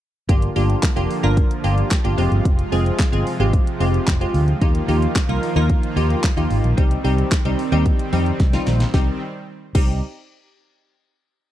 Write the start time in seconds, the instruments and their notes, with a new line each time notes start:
0.29 fingered electric bass G1, supersaw synth D3 F3 A#3 F4, synth stab A#3 D4 F4 G4, kick, closed hi-hat
0.42 closed hi-hat
0.56 fingered electric bass G1, synth stab A#3 D4 F4 G4, open hi-hat
0.70 closed hi-hat
0.83 kick, snare, clap, closed hi-hat
0.96 fingered electric bass F1, synth stab A#3 D4 F4 G4, closed hi-hat
1.11 open hi-hat
1.23 fingered electric bass G1, synth stab A#3 D4 F4 A#4, closed hi-hat
1.37 kick, closed hi-hat
1.51 closed hi-hat
1.64 fingered electric bass G1, synth stab A#3 D4 F4 G4, open hi-hat
1.78 closed hi-hat
1.91 kick, snare, clap, closed hi-hat
2.04 fingered electric bass G1, synth stab A#3 D4 F4 G4, closed hi-hat
2.17 fingered electric bass F1, supersaw synth C3 F3 G#3, synth stab G#3 C4 F4 G4, open hi-hat
2.32 fingered electric bass G1, closed hi-hat
2.45 fingered electric bass F1, kick, closed hi-hat
2.59 closed hi-hat
2.72 fingered electric bass F1, synth stab G#3 C4 F4 G#4, open hi-hat
2.86 closed hi-hat
2.99 kick, snare, clap, closed hi-hat
3.12 fingered electric bass G1, synth stab G#3 C4 F4 G#4, closed hi-hat
3.27 open hi-hat
3.40 fingered electric bass G#1, synth stab G#3 C4 F4 G4, closed hi-hat
3.53 kick, closed hi-hat
3.67 closed hi-hat
3.80 fingered electric bass F1, synth stab G#3 C4 F4 G4, open hi-hat
3.94 closed hi-hat
4.07 fingered electric bass F1, kick, snare, clap, closed hi-hat
4.21 synth stab G#3 C4 F4 G4, closed hi-hat
4.34 fingered electric bass D2, open hi-hat
4.48 closed hi-hat
4.61 fingered electric bass D#2, supersaw synth D#3 A#3 F4, synth stab A#3 D#4 F4 G4, kick, closed hi-hat
4.75 closed hi-hat
4.88 fingered electric bass D#2, synth stab A#3 D#4 F4 G4, open hi-hat
5.02 closed hi-hat
5.16 kick, snare, clap, closed hi-hat
5.29 fingered electric bass C2, synth stab A#3 D#4 F4 A#4, closed hi-hat
5.43 open hi-hat
5.56 fingered electric bass D#2, synth stab A#3 D#4 F4 A#4, closed hi-hat
5.69 kick, closed hi-hat
5.83 closed hi-hat
5.96 fingered electric bass D#2, synth stab A#3 D#4 F4 G4, open hi-hat
6.10 closed hi-hat
6.24 kick, snare, clap, closed hi-hat
6.37 fingered electric bass D#2, synth stab A#3 D#4 F4 G4, closed hi-hat
6.50 fingered electric bass G#1, open hi-hat
6.64 fingered electric bass A#1, closed hi-hat
6.77 fingered electric bass C2, supersaw synth D#3 G3 C4, synth stab G3 C4 D#4 G4, kick, closed hi-hat
6.91 closed hi-hat
7.04 fingered electric bass C2, synth stab G3 C4 D#4 G4, open hi-hat
7.18 closed hi-hat
7.32 kick, snare, clap, closed hi-hat
7.45 fingered electric bass C2, synth stab G3 C4 D#4 G4, closed hi-hat
7.59 open hi-hat
7.72 fingered electric bass D#2, synth stab G3 C4 D#4 G4, closed hi-hat
7.86 kick, closed hi-hat
7.99 closed hi-hat
8.13 fingered electric bass F2, synth stab G3 C4 D#4 G4, open hi-hat
8.26 closed hi-hat
8.40 fingered electric bass C2, kick, snare, closed hi-hat
8.53 synth stab G3 C4 D#4 F4, snare, closed hi-hat
8.67 fingered electric bass A#1, snare, open hi-hat
8.80 snare, closed hi-hat
8.94 fingered electric bass C2, supersaw synth D#3 G3 C4, synth stab G3 C4 D#4 G4, kick, snare
9.75 fingered electric bass C2, synth stab G3 C4 D#4 G4, kick, crash